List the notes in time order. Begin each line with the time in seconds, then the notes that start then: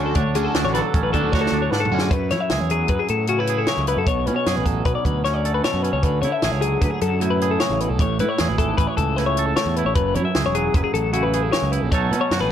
Already playing: D2 D3 F#3 A3 C#4 D4 F#4
0.06 A4
0.15 D2 D3 D4 C#5, kick, closed hi-hat
0.35 D3 A3 C#4 D4 F#4 G#4, closed hi-hat
0.44 A4
0.54 D2 D3 A3 D4 F#4, snare, closed hi-hat
0.65 A1 C#5
0.74 F#3 A4 B4, snare, closed hi-hat
0.83 A4
0.94 A1 C#4, kick, closed hi-hat
1.03 B4
1.13 D2 A2 D3 A3 D4 F#4 A4, kick, closed hi-hat
1.23 D2
1.32 D3 A3 D4 F#4 C#5, kick, snare
1.41 A4
1.46 snare
1.52 D2 D4
1.62 C#5
1.71 G#2 D3 D4 B4, snare
1.80 A4
1.85 floor tom
1.92 F#2 D3 A3 C#4 D4 F#4
1.99 G#4, snare
2.11 F#2 B4, kick, closed hi-hat
2.30 F#3 E4 C#5, snare, closed hi-hat
2.41 E5
2.50 C#2 G#4, snare, closed hi-hat
2.61 E2 C#5
2.70 F#3 G#4, closed hi-hat
2.88 F#2 B4, kick, closed hi-hat
2.99 G#4
3.08 A2 A4, closed hi-hat
3.27 C#3 C#4 F#4, closed hi-hat
3.39 E4 B4
3.47 G#4, closed hi-hat
3.58 A4
3.67 F#2 C#5, snare, closed hi-hat
3.78 C#2
3.87 E4 B4, closed hi-hat
3.97 F#2 A4
4.07 B1 B2 C#5, kick, closed hi-hat
4.27 B2 C#4 B4, closed hi-hat
4.36 C#5
4.46 F#2 G#4, snare, closed hi-hat
4.56 A1 B4
4.65 F#3 A4, kick, closed hi-hat
4.85 B1 B4, kick, closed hi-hat
4.95 D5
5.05 D2 B4, kick, closed hi-hat
5.25 F#2 C#4 C#5, snare, closed hi-hat
5.34 D5
5.45 A4, closed hi-hat
5.54 B4
5.64 B2 C#5, snare, closed hi-hat
5.74 F#2
5.83 C#4 B4, closed hi-hat
5.93 C#2 C#5
6.03 D2 D3 B4, kick, closed hi-hat
6.22 D3 E4 C#5, closed hi-hat
6.32 E5
6.42 A1 G#4, snare, closed hi-hat
6.52 C#2 C#5
6.61 F#3 G#4, closed hi-hat
6.81 D2 B4, kick, closed hi-hat
6.91 G#4
7.01 F#2 A4, closed hi-hat
7.20 A2 E4 F#4, closed hi-hat
7.30 B4
7.41 G#4, closed hi-hat
7.51 A4
7.60 C#3 C#5, snare, closed hi-hat
7.70 A1
7.80 B2 B4, closed hi-hat
7.89 B1 A4
7.99 A1 A2 C#5, kick, closed hi-hat
8.19 A2 E4 B4, closed hi-hat
8.29 C#5
8.38 E2 G#4, snare, closed hi-hat
8.48 G#1 B4
8.58 E3 A4, kick, closed hi-hat
8.77 A1 B4, kick, closed hi-hat
8.87 C#5
8.97 C#2 A4, kick, closed hi-hat
9.16 A2 E4 B4, snare, closed hi-hat
9.26 C#5
9.37 A4, closed hi-hat
9.46 A4
9.56 A2 C#5, snare, closed hi-hat
9.66 E2
9.76 E4 B4, closed hi-hat
9.85 A1 C#5
9.95 F#1 F#2 B4, kick, closed hi-hat
10.15 F#2 E4 C#5, closed hi-hat
10.25 E5
10.35 C#2 G#4, snare, closed hi-hat
10.45 E1 C#5
10.55 F#3 G#4, closed hi-hat
10.74 F#1 B4, kick, closed hi-hat
10.84 G#4
10.94 A1 A4, closed hi-hat
11.13 C#3 E4 F#4, closed hi-hat
11.23 B4
11.33 G#4, closed hi-hat
11.43 A4
11.52 F#2 C#5, snare, closed hi-hat
11.62 C#2
11.72 E4 B4, closed hi-hat
11.82 A#1 A4
11.92 B1 B2 F#3 A3 C#4 A4 C#5, kick, closed hi-hat
12.11 B2 C#4 B4, closed hi-hat
12.21 C#5
12.31 F#2 F#4, snare, closed hi-hat
12.40 A1 G#4 B4